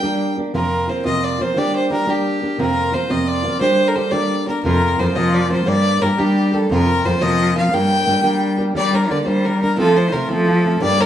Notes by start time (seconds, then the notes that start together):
Already playing: G5
0.03 G3 A#3 D4 G4
0.38 A#3 D4 G4
0.54 F2 C3 F3 A#3 C4 F4 A#4
0.89 F3 A#3 C4 F4 C5
1.05 F2 C3 F3 A#3 C4 F4 D#5
1.24 D5
1.40 F3 A#3 C4 F4 C5
1.56 G3 A#3 D4 G4 D5
1.75 C5
1.90 G3 A#3 D4 G4 A#4
2.07 G3 A#3 D4 G4
2.42 A#3 D4 G4
2.59 F2 C3 F3 A#3 C4 F4 A#4
2.93 F3 A#3 C4 F4 C5
3.10 F2 C3 F3 A#3 C4 F4 D#5
3.27 D5
3.45 F3 A#3 C4 F4
3.60 G3 A#3 D4 G4 C5
3.86 A4 A#4
3.95 G3 A#3 D4 G4 C5
4.12 G3 A#3 D4 G4 D5
4.47 A#3 D4 G4 A#4
4.63 F2 C3 F3 A#3 C4 F4 A#4
4.99 F2 F3 A#3 C4 F4 C5
5.15 F2 C3 F3 A#3 C4 F4 D#5
5.34 D5
5.50 F3 A#3 C4 F4 C5
5.66 G2 G3 A#3 D4 G4 D5
6.02 G2 G3 A#3 D4 G4 A#4
6.18 G3 A#3 D4 G4
6.53 A#3 D4 G4 A4
6.70 F2 C3 F3 A#3 C4 F4 A#4
7.05 F2 F3 A#3 C4 F4 C5
7.21 F2 C3 F3 A#3 C4 F4 D#5
7.56 F3 A#3 C4 F4 F5
7.72 G2 G3 A#3 D4 G4 G5
8.07 G2 G3 A#3 D4 G4
8.23 G3 A#3 D4 G4
8.58 A#3 D4 G4
8.75 G3 A#3 D4 G4 D5
8.93 A#3 D4 G4 A#4
9.10 D3 G3 A#3 D4 G4 D5
9.22 C5 D5
9.26 G3 A#3 D4 G4
9.45 G3 A#3 D4 G4 A#4
9.61 A#3 D4 G4 A#4
9.77 F3 A3 C4 F4 A4
9.96 A3 C4 F4 C5
10.12 C3 F3 A3 C4 F4 A#4
10.29 F3 A3 C4 F4 A4
10.48 F3 A3 C4 F4
10.65 A3 C4 F4
10.81 G2 G3 A#3 D4 G4 D5
11.00 A#3 D4 G4 A#4